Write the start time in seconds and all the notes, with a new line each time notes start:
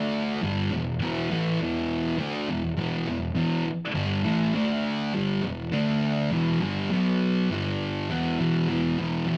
Already playing: D3 A3 D4
0.42 G2 D3 G3
0.71 E2 B2
1.01 E2 B2 E3
1.30 A2 E3 A3
1.60 E2 B2 E3
2.18 D3 A3 D4
2.48 E2 B2
2.77 E2 B2 E3
3.07 E2 B2
3.35 E2 B2 E3
3.65 muted distorted electric guitar stroke
3.95 G2 D3 G3
4.23 A2 E3 A3
4.54 D3 A3 D4
5.13 G2 D3 G3
5.42 E2 B2
5.72 D3 A3 D4
6.30 E2 B2 E3
6.61 G2 D3 G3
6.91 B2 F#3 B3
7.50 G2 D3 G3
8.10 E2 B2 E3
8.39 E2 B2 E3
8.68 E2 B2 E3
8.98 E2 B2 E3
9.26 E2 B2 E3